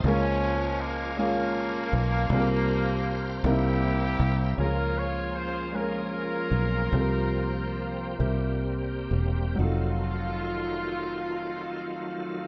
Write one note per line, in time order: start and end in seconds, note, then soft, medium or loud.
0.00 1.89 C#2 loud
0.00 2.29 F4 medium
0.05 1.15 C#3 medium
0.05 1.16 F3 medium
0.05 0.92 G#3 medium
0.05 1.16 G#3 medium
0.05 0.93 A#3 medium
0.05 0.77 C#4 loud
0.05 0.93 C#4 medium
0.05 0.93 F4 medium
0.05 4.54 A#4 medium
0.05 0.94 A#4 medium
0.05 2.30 C#5 medium
0.05 2.30 G#5 medium
0.80 1.18 A#3 medium
1.17 2.05 G#3 medium
1.17 2.05 A#3 medium
1.17 3.29 A#3 loud
1.17 2.06 C#4 medium
1.17 2.06 F4 medium
1.17 2.06 G#4 medium
1.22 3.80 F3 medium
1.93 2.28 B1 medium
2.30 3.40 C2 loud
2.30 3.41 C3 medium
2.30 3.19 G3 medium
2.30 3.19 A#3 medium
2.30 3.19 C4 medium
2.30 3.44 F4 medium
2.30 3.19 F4 medium
2.30 2.39 G#4 medium
2.30 4.55 C5 medium
2.30 4.55 G5 medium
2.40 3.23 A#4 loud
3.44 4.16 C2 loud
3.44 4.54 C3 medium
3.44 4.32 G3 medium
3.44 4.32 A#3 medium
3.44 4.55 A#3 medium
3.44 4.32 C4 medium
3.44 3.51 D#4 medium
3.44 4.57 E4 medium
3.44 4.55 E4 medium
3.44 4.54 G4 loud
3.44 4.33 A#4 medium
3.52 4.36 E4 medium
4.20 4.54 C2 loud
4.57 6.47 C#2 medium
4.57 5.68 C#3 medium
4.57 8.16 F3 medium
4.57 5.46 G#3 medium
4.57 8.16 A#3 medium
4.57 5.46 C#4 medium
4.57 6.90 C#4 soft
4.57 5.46 F4 medium
4.57 5.70 F4 medium
4.57 6.89 G#4 medium
4.57 4.65 G#4 medium
4.57 4.97 A#4 medium
4.66 5.50 A#4 medium
4.98 5.35 C#5 medium
5.35 5.73 C5 medium
5.72 6.64 G#3 medium
5.72 6.64 C#4 medium
5.72 6.65 F4 soft
5.72 8.62 F4 medium
5.72 5.80 G#4 soft
5.72 8.66 A#4 medium
5.81 6.68 A#4 medium
6.51 6.89 B1 medium
6.91 8.16 C2 medium
6.91 8.16 C3 medium
6.91 7.90 G3 medium
6.91 9.56 C4 medium
6.91 7.90 C4 medium
6.91 7.90 F4 medium
6.91 8.18 G4 medium
6.91 7.00 A4 medium
7.01 7.94 A#4 medium
8.19 9.07 C2 medium
8.19 9.55 C3 medium
8.19 9.26 G3 medium
8.19 9.58 G3 medium
8.19 9.58 A#3 soft
8.19 9.26 C4 medium
8.19 9.58 G4 medium
8.19 9.26 A#4 medium
8.19 9.26 E5 medium
9.11 9.55 E1 medium
9.55 12.47 F1 medium
9.55 12.47 F2 medium
9.55 12.47 D#3 medium
9.55 12.47 F#3 medium
9.55 12.47 D#4 medium
9.59 12.47 F#3 medium
9.59 12.47 A3 medium
9.59 12.47 F4 medium
9.59 12.47 F4 soft
9.59 12.47 F4 medium
9.63 12.47 A4 medium